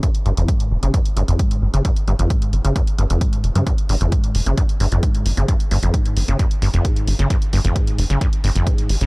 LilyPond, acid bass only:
\new Staff \with { instrumentName = "Acid bass" } { \clef bass \time 4/4 \tempo 4 = 132 g,16 r16 g,16 f,16 aes,8 g,16 cis16 g,16 r16 g,16 f,16 aes,8 g,16 cis16 | g,16 r16 g,16 f,16 aes,8 g,16 cis16 g,16 r16 g,16 f,16 aes,8 g,16 cis16 | g,16 r16 g,16 f,16 aes,8 g,16 cis16 g,16 r16 g,16 f,16 aes,8 g,16 cis16 | g,16 r16 g,16 f,16 aes,8 g,16 cis16 g,16 r16 g,16 f,16 aes,8 g,16 cis16 |
g,16 r16 g,16 f,16 aes,8 g,16 cis16 g,16 r16 g,16 f,16 aes,8 g,16 cis16 | }